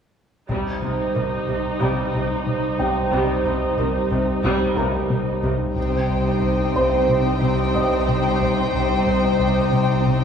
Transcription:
0.49 C2 C3 G3 D#4 G4 C5, taiko
0.82 C2 C3
1.15 C2 C3 D#3
1.48 C2 C3
1.81 C2 C3 G3 A#5
2.14 C2 C3
2.47 C3
2.79 C2 C3 G5
3.12 C2 C3 G3
3.45 C2 C3
3.78 C2 C3 D#3
4.11 C2 C3
4.44 C2 C3 G3
4.76 C2 C3 A#4 A#5
5.10 C3
5.43 C2 C3
5.76 C2 C3 G3 C4 D#4 G4 C5 G5
6.09 C2
6.42 C2
6.75 C2 C5 C6
7.09 C3
7.42 C3
7.74 C2 D#5 D#6
8.08 C3
8.41 C2
8.74 C2
9.07 C2
9.39 C2
9.72 C3
10.06 C3

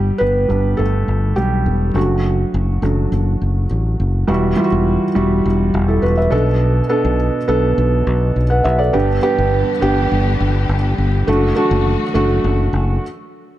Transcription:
Already playing: G1 G3 G4
0.18 G1 B3 B4
0.48 G1 G3 B3 D4
0.77 G1 A3 A4
1.08 G1
1.36 B1 G3 G4
1.66 E1
1.94 F#1 F#3 A3 D4 F#4
2.54 F#1
2.82 F#1 F#3 A3 D4
3.12 F#1
3.41 F#1
3.71 A1
4.00 F#1
4.27 E1 E3 G3 E4 F#4
4.56 G3 E4 F4
4.64 F#4
4.72 E1
5.15 E1 G3 E4 F#4
5.46 E1
5.74 E1
5.88 E4 A4
6.02 E1 F#4 B4
6.18 B4 E5
6.30 B1 B2 B3 D4 A4
6.89 B3 D4 A4
7.05 B1
7.48 B1 B3 D4 A4
7.78 B1
8.07 B1
8.36 B1
8.50 B4 F#5
8.64 B1 B4 E5
8.79 A4 D5
8.93 G1 G2 D3 G3 B3 D4 G4
9.22 B3 D4 G4
9.38 G1
9.81 G1 B3 D4 G4
10.12 G1
10.40 G1
10.69 G1
10.98 G1
11.27 F#1 F#3 A3 D4 F#4
11.56 A3 D4 F#4
11.71 F#1
12.14 F#1 A3 D4 F#4
12.44 F#1
12.73 F#1

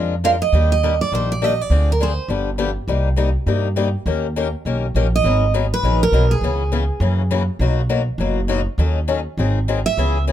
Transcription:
Already playing: F2 F3 G#3 D4 F4 A#4
0.24 F3 G#3 D4 F4 A#4 F5
0.42 D#5
0.53 D#2 D#3 G3 A#3 D4 G4
0.72 D#5
0.83 D#3 G3 A#3 D4 G4
1.01 D5
1.12 A#1 D#3 G3 A#3 D4 G4 C5
1.32 D5
1.42 D#3 G3 A#3 D4 G4 D#5
1.61 D5
1.70 D2 D3 F3 C4 D4 G#4
1.92 A#4
2.00 D3 F3 C4 D4 G#4 C5
2.28 G1 D3 F3 B3 D4 G4
2.58 D3 F3 B3 D4 G4
2.88 C2 C3 G3 A#3 D#4 G4
3.16 C3 G3 A#3 D#4 G4
3.46 G2 C3 G3 A#3 D#4 G4
3.76 C3 G3 A#3 D#4 G4
4.06 D#2 D#3 A#3 C#4 G4 A#4
4.36 D#3 A#3 C#4 G4 A#4
4.65 B1 D#3 A#3 C#4 G4 A#4
4.95 A#1 D#3 A#3 C#4 G4 A#4
5.16 D#5
5.24 G#1 D#3 F#3 B3 D#4 G#4
5.54 D#3 F#3 B3 D#4 G#4
5.74 B4
5.83 A#1 D#3 F#3 B3 D#4 G#4
6.03 A#4
6.12 B1 D#3 F#3 B3 D#4 G#4
6.31 G#4
6.41 C#2 C#3 E3 B3 C#4 G#4
6.72 C#3 E3 B3 C#4 G#4
7.00 F#2 C#3 E3 A#3 C#4 F#4
7.31 C#3 E3 A#3 C#4 F#4
7.59 B1 B2 F#3 A#3 D#4 F#4
7.89 B2 F#3 A#3 D#4 F#4
8.18 F#1 B2 F#3 A#3 D#4 F#4
8.48 B2 F#3 A#3 D#4 F#4
8.78 D#2 D#3 F#3 C#4 D#4 A4
9.08 D#3 F#3 C#4 D#4 A4
9.37 G#1 D#3 F#3 C4 D#4 G#4
9.68 D#3 F#3 C4 D#4 G#4
9.86 E5
9.97 C#2 C#3 E3 B3 C#4 G#4
10.27 C#3 E3 B3 C#4 G#4

